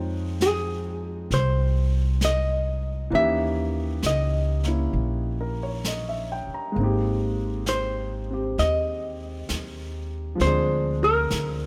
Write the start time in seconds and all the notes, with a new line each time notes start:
Already playing: F2 F3 G#3 C4 D#4 G5
0.41 G#4, snare, hi-hat pedal
1.31 C2 C5, brush sweep, snare
2.21 D#5, snare, hi-hat pedal
3.10 D#2 E3 A#3 C#4 D#4, brush sweep
3.15 G4 E5
4.03 C#2 D#5, snare, hi-hat pedal
4.63 A#3 C#4, snare
4.68 E4
4.93 A#1, brush sweep
5.41 A#4
5.63 C#5
5.84 D#5, snare, hi-hat pedal
6.09 E5
6.32 G5
6.47 muted upright bass stroke
6.54 A#5
6.72 G#3 A#3, brush sweep
6.76 G#1 C4
6.81 D#4 G4
7.66 C5, snare, hi-hat pedal
8.30 C4 G4
8.58 D#2 D#5, brush sweep, snare
9.49 D#2, snare, hi-hat pedal
10.35 F3 G#3
10.40 D2 C4 C5, brush sweep, snare
10.44 D4 G#4
11.04 A#4
11.30 D2, snare, hi-hat pedal